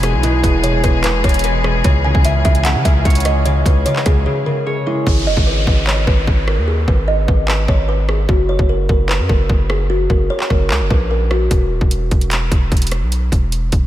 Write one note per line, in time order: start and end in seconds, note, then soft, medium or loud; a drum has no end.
0.00 0.15 E1 loud
0.00 0.22 B2 medium
0.00 5.03 E3 medium
0.00 5.03 G#3 medium
0.00 1.63 G#3 medium
0.00 1.81 B3 medium
0.00 5.03 G#4 medium
0.00 0.21 G#4 medium
0.00 1.44 B4 loud
0.00 0.13 C#5 medium
0.00 cross-stick loud
0.00 closed hi-hat medium
0.14 0.42 B1 loud
0.23 0.42 B2 loud
0.23 0.41 E4 medium
0.23 closed hi-hat medium
0.43 0.82 E1 loud
0.43 0.63 B2 medium
0.43 0.61 G#4 medium
0.43 kick medium
0.43 closed hi-hat medium
0.64 0.83 B2 medium
0.64 0.81 C#5 medium
0.64 closed hi-hat medium
0.84 1.23 E1 loud
0.84 1.03 B2 medium
0.84 1.02 B4 medium
0.84 kick medium
0.84 closed hi-hat medium
1.04 1.23 B2 loud
1.04 1.22 B4 loud
1.04 clap loud
1.04 closed hi-hat medium
1.24 1.82 E1 loud
1.24 1.89 B2 medium
1.24 1.42 C#5 medium
1.24 kick loud
1.24 closed hi-hat soft
1.29 closed hi-hat medium
1.34 closed hi-hat medium
1.39 closed hi-hat medium
1.44 3.49 B4 medium
1.44 1.62 B4 medium
1.44 closed hi-hat medium
1.64 1.89 G#3 medium
1.64 1.82 G#4 medium
1.64 cross-stick loud
1.84 2.13 C#2 loud
1.84 2.04 C#3 loud
1.84 5.03 C#4 medium
1.84 2.02 C#5 medium
1.84 kick loud
1.84 closed hi-hat medium
2.04 2.24 C#3 medium
2.04 2.22 G#5 medium
2.15 2.44 C#2 loud
2.15 kick medium
2.25 2.44 C#3 medium
2.25 2.43 E5 medium
2.25 closed hi-hat medium
2.45 2.77 C#2 loud
2.45 2.63 C#3 medium
2.45 2.63 E5 medium
2.45 kick loud
2.45 closed hi-hat medium
2.55 closed hi-hat medium
2.65 2.84 C#3 medium
2.65 2.83 F#5 loud
2.65 clap loud
2.65 closed hi-hat medium
2.75 2.84 C#3 loud
2.85 3.04 C#2 loud
2.85 3.44 C#3 medium
2.85 3.23 E5 medium
2.85 kick loud
2.85 closed hi-hat medium
3.05 3.63 C#2 loud
3.05 4.66 C#5 loud
3.05 kick medium
3.05 closed hi-hat soft
3.10 closed hi-hat medium
3.15 closed hi-hat medium
3.20 closed hi-hat medium
3.25 4.85 G#3 medium
3.25 3.43 D#5 medium
3.25 cross-stick loud
3.25 closed hi-hat medium
3.45 3.64 C#3 loud
3.45 3.63 C#5 medium
3.45 closed hi-hat medium
3.65 3.85 C#2 loud
3.65 3.85 C#3 medium
3.65 3.84 B4 medium
3.65 kick medium
3.65 closed hi-hat medium
3.86 4.05 C#3 medium
3.86 4.04 C#5 medium
3.86 closed hi-hat medium
3.96 clap medium
4.06 4.26 C#2 loud
4.06 4.25 C#3 medium
4.06 4.24 G#4 medium
4.06 kick medium
4.06 cross-stick medium
4.06 closed hi-hat medium
4.26 4.45 C#3 medium
4.26 4.44 G#4 medium
4.46 5.12 C#3 medium
4.46 4.64 A#4 medium
4.66 4.84 G#4 medium
4.66 6.58 C#5 medium
4.86 5.12 G#3 medium
4.86 5.05 E4 medium
5.06 5.28 G#1 loud
5.06 5.24 G#4 medium
5.06 kick loud
5.06 downlifter medium
5.27 5.36 F#1 loud
5.27 5.45 D#5 medium
5.37 5.66 G#1 loud
5.37 kick medium
5.47 5.65 B4 medium
5.67 6.06 G#1 loud
5.67 5.85 B4 medium
5.67 kick medium
5.87 6.05 C#5 medium
5.87 clap loud
6.07 6.27 G#1 loud
6.07 6.45 B4 medium
6.07 kick loud
6.27 6.59 G#1 loud
6.27 kick medium
6.48 6.65 A#4 medium
6.48 cross-stick loud
6.58 6.86 D#2 loud
6.68 6.86 G#4 medium
6.88 7.26 G#1 loud
6.88 7.06 B4 medium
6.88 kick medium
7.08 7.26 D#5 medium
7.28 7.67 G#1 loud
7.28 7.46 B4 medium
7.28 kick medium
7.48 7.66 B4 loud
7.48 clap loud
7.68 8.26 G#1 loud
7.68 7.86 C#5 medium
7.68 kick loud
7.89 8.06 B4 medium
8.09 8.27 G#4 medium
8.09 cross-stick loud
8.29 8.58 F#1 loud
8.29 8.47 F#4 medium
8.29 kick loud
8.49 8.67 C#5 medium
8.59 8.88 F#1 loud
8.59 kick medium
8.69 8.87 A#4 medium
8.89 9.21 F#1 loud
8.89 9.07 A#4 medium
8.89 kick loud
9.09 9.27 B4 loud
9.09 clap loud
9.19 9.29 F#2 medium
9.29 9.49 F#1 loud
9.29 9.67 A#4 medium
9.29 kick loud
9.49 10.08 F#1 loud
9.49 kick loud
9.70 9.88 G#4 medium
9.70 cross-stick loud
9.90 10.08 F#4 medium
10.10 10.29 F#1 loud
10.10 10.28 A#4 medium
10.10 kick medium
10.30 10.48 C#5 medium
10.40 clap medium
10.50 10.72 F#1 loud
10.50 10.68 A#4 medium
10.50 kick medium
10.50 cross-stick medium
10.70 10.82 C#2 loud
10.70 10.88 A#4 medium
10.70 clap loud
10.81 10.90 F#1 loud
10.90 11.48 A#1 loud
10.90 11.08 B4 medium
10.90 kick loud
11.11 11.29 A#4 medium
11.31 11.49 F#4 medium
11.31 cross-stick loud
11.51 11.72 E1 loud
11.51 kick loud
11.51 closed hi-hat medium
11.71 11.81 D#1 loud
11.81 12.10 E1 loud
11.81 kick medium
11.91 closed hi-hat medium
12.11 12.50 E1 loud
12.11 kick medium
12.11 closed hi-hat medium
12.21 closed hi-hat medium
12.31 clap loud
12.31 closed hi-hat medium
12.52 12.71 E1 loud
12.52 kick loud
12.52 closed hi-hat medium
12.72 13.03 E1 loud
12.72 kick loud
12.72 closed hi-hat soft
12.77 closed hi-hat medium
12.82 closed hi-hat medium
12.87 closed hi-hat medium
12.91 cross-stick medium
12.91 closed hi-hat medium
13.02 13.31 B1 medium
13.12 closed hi-hat medium
13.32 13.71 E1 loud
13.32 kick medium
13.32 closed hi-hat medium
13.52 closed hi-hat medium
13.72 13.87 E1 loud
13.72 kick medium
13.72 closed hi-hat medium